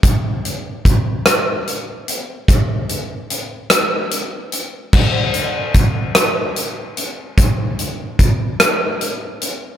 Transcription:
\new DrumStaff \with { instrumentName = "Drums" } \drummode { \time 6/8 \tempo 4. = 49 <hh bd>8 hh8 <hh bd>8 <hh ss>8 hh8 hh8 | <hh bd>8 hh8 hh8 <hh ss>8 hh8 hh8 | <cymc bd>8 hh8 <hh bd>8 <hh ss>8 hh8 hh8 | <hh bd>8 hh8 <hh bd>8 <hh ss>8 hh8 hh8 | }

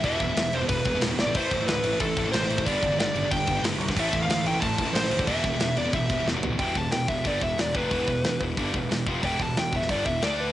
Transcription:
<<
  \new Staff \with { instrumentName = "Lead electric guitar" } { \time 4/4 \key e \phrygian \tempo 4 = 183 e''4. c''8 b'4 r8 d''8 | c''4 b'4 a'4 c''4 | d''4 d''4 g''4 r4 | e''8. f''8. g''8 a''4 c''4 |
e''4. d''8 e''4 r4 | g''8 a''8 g''8 e''8 d''8 e''8 d''8 b'8~ | b'4. r2 r8 | g''8 a''8 g''8 e''8 d''8 e''8 d''8 b'8 | }
  \new Staff \with { instrumentName = "Pipe organ" } { \time 4/4 \key e \phrygian <g b g' b'>1 | <a c' a' e''>1 | <g b g' b'>1 | <a c' a' c''>1 |
<g b g' b'>1 | <g b g' b'>1~ | <g b g' b'>1~ | <g b g' b'>2. <d a d' d''>4 | }
  \new Staff \with { instrumentName = "Pipe organ" } { \clef bass \time 4/4 \key e \phrygian e1~ | e1 | d1 | e1~ |
e1 | e1~ | e1~ | e2. a,4 | }
  \new Staff \with { instrumentName = "Distorted electric guitar" } { \clef bass \time 4/4 \key e \phrygian <e, b, e>8 <e, b,>16 <e, b,>16 <e, b,>8 <e, b,>16 <e, b,>16 <e, b,>8 <e, b,>16 <e, b,>16 <e, b,>16 <e, b,>16 <e, b,>16 <e, b,>16 | <a, e a>8 <a, e>16 <a, e>16 <a, e>8 <a, e>16 <a, e>16 <a, e>8 <a, e>16 <a, e>16 <a, e>16 <a, e>16 <a, e>16 <a, e>16 | <g, d g>8 <g, d>16 <g, d>16 <g, d>8 <g, d>16 <g, d>16 <g, d>8 <g, d>16 <g, d>16 <g, d>16 <g, d>16 <g, d>16 <g, d>16 | <a, e a>8 <a, e>16 <a, e>16 <a, e>8 <a, e>16 <a, e>16 <a, e>8 <a, e>16 <a, e>16 <a, e>16 <a, e>16 <a, e>16 <a, e>16 |
<e, b, e>8 <e, b,>16 <e, b,>16 <e, b,>8 <e, b,>16 <e, b,>16 <e, b,>8 <e, b,>16 <e, b,>16 <e, b,>16 <e, b,>16 <e, b,>16 <e, b,>16 | <e, b, e>8 <e, b,>8 <e, b,>8 <e, b,>8 <g, d g>8 <e, b,>8 <e, b,>8 <f, c f>8 | <e, b, e>8 <e, b,>8 <e, b,>8 <e, b,>8 <g, d g>8 <e, b,>8 <e, b,>8 <f, c f>8 | <e, b, e>8 <e, b,>8 <e, b,>8 <e, b,>8 <g, d g>8 <e, b,>8 <d a d'>4 | }
  \new Staff \with { instrumentName = "Distorted electric guitar" } { \clef bass \time 4/4 \key e \phrygian <e, b, e>8 <e, b,>16 <e, b,>16 <e, b,>8 <e, b,>16 <e, b,>16 <e, b,>8 <e, b,>16 <e, b,>16 <e, b,>16 <e, b,>16 <e, b,>16 <e, b,>16 | <a, e a>8 <a, e>16 <a, e>16 <a, e>8 <a, e>16 <a, e>16 <a, e>8 <a, e>16 <a, e>16 <a, e>16 <a, e>16 <a, e>16 <a, e>16 | <g, d g>8 <g, d>16 <g, d>16 <g, d>8 <g, d>16 <g, d>16 <g, d>8 <g, d>16 <g, d>16 <g, d>16 <g, d>16 <g, d>16 <g, d>16 | <a, e a>8 <a, e>16 <a, e>16 <a, e>8 <a, e>16 <a, e>16 <a, e>8 <a, e>16 <a, e>16 <a, e>16 <a, e>16 <a, e>16 <a, e>16 |
<e, b, e>8 <e, b,>16 <e, b,>16 <e, b,>8 <e, b,>16 <e, b,>16 <e, b,>8 <e, b,>16 <e, b,>16 <e, b,>16 <e, b,>16 <e, b,>16 <e, b,>16 | <e, b, e>8 <e, b,>8 <e, b,>8 <e, b,>8 <g, d g>8 <e, b,>8 <e, b,>8 <f, c f>8 | <e, b, e>8 <e, b,>8 <e, b,>8 <e, b,>8 <g, d g>8 <e, b,>8 <e, b,>8 <f, c f>8 | <e, b, e>8 <e, b,>8 <e, b,>8 <e, b,>8 <g, d g>8 <e, b,>8 <d a d'>4 | }
  \new Staff \with { instrumentName = "Picked electric bass" } { \clef bass \time 4/4 \key e \phrygian e,,8 e,,8 e,,8 e,,8 e,,8 e,,8 e,,8 a,,8 | a,,8 a,,8 d,8 a,,8 a,,8 a,,8 a,,8 a,,8 | g,,8 g,,8 g,,8 g,,8 g,,8 g,,8 g,,8 c,8 | a,,8 a,,8 d,8 a,,8 a,,8 a,,8 a,,8 d,8 |
e,,8 e,,8 e,,8 e,,8 e,,8 e,,8 e,,8 a,,8 | e,,8 e,,8 e,,8 e,,8 g,,8 e,,8 e,,8 f,,8 | e,,8 e,,8 e,,8 e,,8 g,,8 e,,8 e,,8 f,,8 | e,,8 e,,8 e,,8 e,,8 g,,8 e,,8 d,4 | }
  \new DrumStaff \with { instrumentName = "Drums" } \drummode { \time 4/4 <cymc bd>8 <cymc bd>8 <cymc sn>8 cymc8 <cymc bd>8 <cymc bd>8 <cymc sn>8 sn8 | <cymc bd>8 <cymc bd>8 <cymc sn>8 cymc8 <cymc bd>8 <cymc bd>8 <cymc sn>16 sn16 cymc16 bd16 | <cymc bd>8 <cymc bd>8 <cymc sn>8 cymc8 <cymc bd>8 <cymc bd>8 <cymc sn>8 cymc16 <bd sn>16 | <cymc bd>8 <cymc bd>8 <cymc sn>8 cymc8 <cymc bd>8 <cymc bd>8 <cymc sn>16 sn16 cymc16 bd16 |
<cymc bd>8 <cymc bd>8 <cymc sn>8 cymc8 <cymc bd>8 <cymc bd>8 sn8 tomfh8 | <hho bd>8 bd8 <hho sn>8 bd8 <hho bd>8 bd8 <hho sn>8 bd8 | <hho bd>8 bd8 <hho sn>8 bd8 <hho bd>8 bd8 <hho sn>8 bd8 | <hho bd>8 bd8 <hho sn>8 bd16 sn16 <hho bd>8 bd8 <hho sn>4 | }
>>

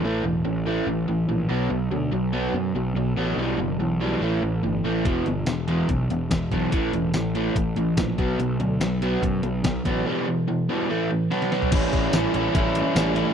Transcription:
<<
  \new Staff \with { instrumentName = "Overdriven electric guitar" } { \clef bass \time 4/4 \key a \mixolydian \tempo 4 = 144 <a, e a>8 <a, e>8 <a, e>8 <a, e a>8 <a, e>8 <a, e>8 <a, e>8 <b, fis b>8 | <b, fis>8 <b, fis>8 <b, fis>8 <b, fis b>8 <b, fis>8 <b, fis>8 <b, fis>8 <b, fis b>8 | <b, e g>8 <b, e>8 <b, e>8 <b, e g>8 <a, e a>8 <a, e>8 <a, e>8 <a, e a>8 | <e, b, e>8 <e, b,>8 <e, b,>8 <e, b, e>8 <e, b,>8 <e, b,>8 <e, b,>8 <e, b, e>8 |
<a, e a>8 <a, e>8 <a, e>8 <a, e a>8 <a, e>8 <a, e>8 <a, e>8 <b, fis b>8 | <b, fis>8 <b, fis>8 <b, fis>8 <b, fis b>8 <b, fis>8 <b, fis>8 <b, fis>8 <b, fis b>8 | <b, e g>8 <b, e>8 <b, e>8 <b, e g>8 <a, e a>8 <a, e>8 <b, fis b>8 <b, fis b>8 | <a, e g cis' e'>4 <e g cis' e'>8 <g cis' e'>8 <e g cis' e'>4 <a, e g cis' e'>8 <g cis' e'>8 | }
  \new Staff \with { instrumentName = "Picked electric bass" } { \clef bass \time 4/4 \key a \mixolydian a,,8 e,,8 a,,4 a,,8 a,,8 ais,,8 b,,8 | b,,8 d,8 b,,4 fis,8 b,,8 b,,8 a,,8 | b,,8 fis,,8 b,,4 a,,8 a,,8 g,,8 a,,8 | e,,8 g,,8 e,,4 b,,8 e,,8 e,,8 b,,8 |
a,,8 e,,8 a,,4 a,,8 a,,8 ais,,8 b,,8 | b,,8 d,8 b,,4 fis,8 b,,8 b,,8 a,,8 | r1 | a,,8 a,,8 a,,8 a,,8 a,,4 a,,4 | }
  \new DrumStaff \with { instrumentName = "Drums" } \drummode { \time 4/4 r4 r4 r4 r4 | r4 r4 r4 r4 | r4 r4 r4 r4 | <hh bd>8 hh8 <hh sn tamb>8 hh8 <hh bd>8 hh8 <hh bd sn tamb>8 <hh bd>8 |
<hh bd>8 hh8 <hh sn tamb>8 hh8 <hh bd>8 hh8 <hh bd sn tamb>8 <hh bd>8 | hh8 hh8 <hh sn tamb>8 hh8 <hh bd>8 hh8 <hh bd sn tamb>8 <hh bd>8 | r4 r4 r4 sn16 sn16 sn16 tomfh16 | <cymc hh bd>8 <hh bd>8 <hh sn tamb>8 hh8 <hh bd>8 hh8 <hh sn tamb>16 sn16 hh8 | }
>>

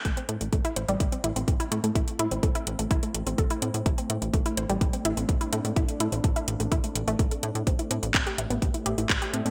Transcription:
<<
  \new Staff \with { instrumentName = "Ambient pad" } { \time 4/4 \key a \minor \tempo 4 = 126 << { <a c'>1~ | <a c'>1~ | <a c'>1~ | <a c'>1 |
<g' c'' d''>1 | } \\ { e'1~ | e'1 | d'1~ | d'1 |
e''1 | } >> }
  \new Staff \with { instrumentName = "Synth arpeggio sound" } { \time 4/4 \key a \minor a16 c'16 a16 r16 a16 e'16 c''16 g16 r16 c'16 e'16 c'16 r16 e'16 a16 a16 | e'16 r16 e'16 c'16 a'16 e'16 r16 a16 e'16 a16 r16 c'16 a'16 e'16 c'16 r16 | a16 c'16 a16 r16 a16 e'16 c''16 g16 r16 c'16 e'16 c'16 r16 e'16 a16 a16 | e'16 r16 e'16 c'16 a'16 e'16 r16 a16 e'16 a16 r16 a16 a16 a'16 e'16 r16 |
c'16 e'16 c'16 r16 c'16 g'16 e''16 b16 r16 e'16 g'16 e'16 r16 g'16 c'16 c'16 | }
  \new Staff \with { instrumentName = "Analog synth bass" } { \clef bass \time 4/4 \key a \minor a,,16 r16 a,16 a,,16 a,,16 r16 a,,16 a,,16 a,,16 r16 a,,16 a,,16 a,,16 r16 a,16 a,16 | a,,16 r16 a,16 a,,16 a,,16 r16 a,,16 a,,16 a,,16 r16 a,,16 a,,16 a,,16 r16 a,16 a,16 | a,,16 r16 a,16 a,,16 a,,16 r16 a,,16 a,,16 a,,16 r16 a,,16 a,,16 a,,16 r16 a,16 a,16 | a,,16 r16 a,16 a,,16 a,,16 r16 a,,16 a,,16 a,,16 r16 a,,16 a,,16 a,,16 r16 a,16 a,16 |
a,,16 r16 a,16 a,,16 a,,16 r16 a,,16 a,,16 a,,16 r16 a,,16 a,,16 a,,16 r16 a,16 a,16 | }
  \new DrumStaff \with { instrumentName = "Drums" } \drummode { \time 4/4 <hh bd>16 hh16 hh16 hh16 <hh bd>16 hh16 hh16 hh16 <hh bd>16 hh16 hh16 hh16 <hh bd>16 hh16 hh16 hh16 | <hh bd>16 hh16 hh16 hh16 <hh bd>16 hh16 hh16 hh16 <hh bd>16 hh16 hh16 hh16 <hh bd>16 hh16 hh16 hh16 | <hh bd>16 hh16 hh16 hh16 <hh bd>16 hh16 hh16 hh16 <hh bd>16 hh16 hh16 hh16 <hh bd>16 hh16 hh16 hh16 | <hh bd>16 hh16 hh16 hh16 <hh bd>16 hh16 hh16 hh16 <hh bd>16 hh16 hh16 hh16 <hh bd>16 hh16 hh16 hh16 |
<hh bd>16 hh16 hh16 hh16 <hc hh bd>16 hh16 hh16 hh16 <hh bd>16 hh16 hh16 hh16 <hc hh bd>16 hh16 hh16 hh16 | }
>>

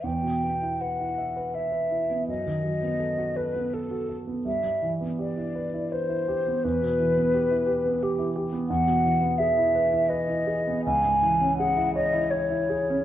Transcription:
<<
  \new Staff \with { instrumentName = "Flute" } { \time 3/4 \key e \minor \tempo 4 = 82 g''4 fis''4 e''4 | dis''4. b'8 a'4 | e''8 r8 d''4 c''4 | b'2 g'8 r8 |
\key e \major fis''4 e''4 dis''4 | gis''4 fis''8 dis''8 cis''4 | }
  \new Staff \with { instrumentName = "Grand piano" } { \time 3/4 \key e \minor e,16 b,16 b16 e'16 b'16 e'16 e''16 b'16 e''16 b'16 e'16 b16 | fis,16 dis16 fis16 b16 a'16 fis'16 a'16 b16 a'16 fis'16 a'16 b16 | g,16 g16 e16 b16 g'16 e'16 b'16 e'16 b'16 e'16 g'16 b16 | e,16 b,16 e16 b16 g'16 e'16 g'16 b16 g'16 e'16 g'16 b16 |
\key e \major e,16 b,16 e16 b16 gis'16 e'16 b'16 e'16 b'16 e'16 gis'16 b16 | cis,16 gis,16 e16 cis'16 gis'16 e'16 cis''16 e'16 cis''16 e'16 gis'16 cis'16 | }
>>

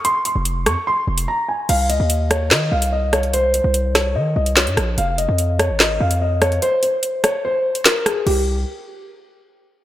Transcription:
<<
  \new Staff \with { instrumentName = "Grand piano" } { \time 4/4 \key c \phrygian \tempo 4 = 146 c'''8 c'''4 des'''8 c'''4 bes''8 aes''8 | f''8 ees''4 des''8 ees''8 f''8 ees''8 des''8 | c''8 r4 des''8 ees''8 ees''8 des''4 | f''8 ees''4 des''8 ees''8 f''8 ees''8 des''8 |
c''8 c''4 des''8 c''4 bes'8 aes'8 | g'8 r2. r8 | }
  \new Staff \with { instrumentName = "808-style bass" } { \clef bass \time 4/4 \key c \phrygian r8. f,,8. f,16 r8. f,,8 r4 | c,8 des,16 ees,4~ ees,16 ees8 c,4.~ | c,8. c,4~ c,16 ees8 c,8. g,16 bes,,8 | f,,8. f,4 aes,,8. f,4. |
r1 | c,4 r2. | }
  \new DrumStaff \with { instrumentName = "Drums" } \drummode { \time 4/4 hh8 hh8 hh8 <hh ss>8 r8. hh16 r4 | <cymc hh>8 hh8 hh8 <hh ss>8 <hc sn>8. hh16 r8 <hh ss>16 hh16 | hh8 hh8 hh8 <hh ss sn>8 r8. hh16 <hc hh sn>16 hh16 <hh ss>8 | hh8 hh8 hh8 <hh ss>8 <hc sn>8. hh16 r8 <hh ss>16 hh16 |
hh8 hh8 hh8 <hh ss>8 r8. hh16 <hc hh sn>8 <hh ss>8 | cymc4 r4 r4 r4 | }
>>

